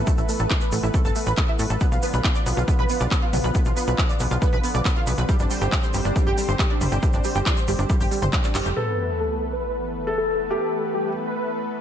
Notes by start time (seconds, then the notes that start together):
Already playing: E3 A3 B3 A4 B4
0.07 A3, kick, closed hi-hat, shaker
0.18 A1 E4, closed hi-hat, shaker
0.29 A3, open hi-hat, shaker
0.39 A1 A4, closed hi-hat, shaker
0.50 A3, kick, clap, closed hi-hat, shaker
0.61 B4, closed hi-hat, shaker
0.72 A1 A3, open hi-hat, shaker
0.83 A1 E4, closed hi-hat, shaker
0.94 A3, kick, closed hi-hat, shaker
1.05 G1 A4, closed hi-hat, shaker
1.16 A3, open hi-hat, shaker
1.26 A1 B4, closed hi-hat, shaker
1.37 A3, kick, clap, closed hi-hat, shaker
1.48 E4, closed hi-hat
1.59 A2 A3, open hi-hat, shaker
1.70 A1 A4, closed hi-hat, shaker
1.80 D3 F3 B3 F4, kick, closed hi-hat, shaker
1.92 B1 F4, closed hi-hat, shaker
2.03 B3, open hi-hat, shaker
2.13 B1 B4, closed hi-hat, shaker
2.24 B3, kick, clap, closed hi-hat, shaker
2.35 D5, closed hi-hat, shaker
2.46 B1 B3, open hi-hat, shaker
2.57 B1 F4, closed hi-hat, shaker
2.68 B3, kick, closed hi-hat, shaker
2.79 B1 B4, closed hi-hat
2.89 B3, open hi-hat, shaker
3.00 B1 D5, closed hi-hat, shaker
3.11 B3, kick, clap, closed hi-hat, shaker
3.22 F4, closed hi-hat
3.33 B1 B3, open hi-hat, mid tom, shaker
3.44 B1 B4, closed hi-hat, shaker
3.55 B3, kick, closed hi-hat, shaker
3.65 B1 F4, closed hi-hat, shaker
3.77 B3, open hi-hat, shaker
3.87 B1 B4, closed hi-hat, shaker
3.98 B3, kick, clap, closed hi-hat, shaker
4.09 D5, closed hi-hat, shaker
4.20 B1 B3, open hi-hat, shaker
4.31 B1 F4, closed hi-hat, shaker
4.42 B3, kick, closed hi-hat, shaker
4.53 B1 B4, closed hi-hat
4.63 B3, open hi-hat, shaker
4.74 B1 D5, closed hi-hat, shaker
4.85 B3, kick, clap, closed hi-hat, shaker
4.96 F4, closed hi-hat
5.07 B1 B3, open hi-hat, shaker
5.18 B1 B4, closed hi-hat, shaker
5.29 G3 C4 G4 C5, kick, closed hi-hat, shaker
5.39 G1 D4, closed hi-hat, shaker
5.50 G3, open hi-hat, shaker
5.61 G1 G4, closed hi-hat, shaker
5.72 G3, kick, clap, closed hi-hat, shaker
5.83 C5, closed hi-hat, shaker
5.94 G1 G3, open hi-hat, shaker
6.05 G1 D4, closed hi-hat, shaker
6.16 G3, kick, closed hi-hat, shaker
6.27 G1 G4, closed hi-hat
6.38 G3, open hi-hat, shaker
6.48 G1 C5, closed hi-hat, shaker
6.59 G3, kick, clap, closed hi-hat, shaker
6.70 D4, closed hi-hat
6.81 G1 G3, open hi-hat, mid tom, shaker
6.92 G1 G4, closed hi-hat, shaker
7.03 G3, kick, closed hi-hat, shaker
7.13 G1 D4, closed hi-hat, shaker
7.24 G3, open hi-hat, shaker
7.35 G1 G4, closed hi-hat, shaker
7.46 G3, kick, clap, closed hi-hat, shaker
7.57 C5, closed hi-hat, shaker
7.68 G1 G3, open hi-hat, shaker
7.79 G1 D4, closed hi-hat, shaker
7.90 G3, kick, closed hi-hat, shaker
8.00 G1 G4, open hi-hat, shaker
8.11 G3, open hi-hat, shaker
8.22 G1 C5, closed hi-hat, mid tom, shaker
8.33 G3, kick, clap, closed hi-hat, shaker
8.44 D4, clap, closed hi-hat, shaker
8.55 G1 G3, clap, open hi-hat, shaker
8.66 F1 G4, closed hi-hat, shaker
8.76 E3 A3 B3 A4 B4, sub drop
9.20 A4
9.53 B4
10.07 A4
10.18 A4
10.50 G4 A4
10.94 G4
11.27 B4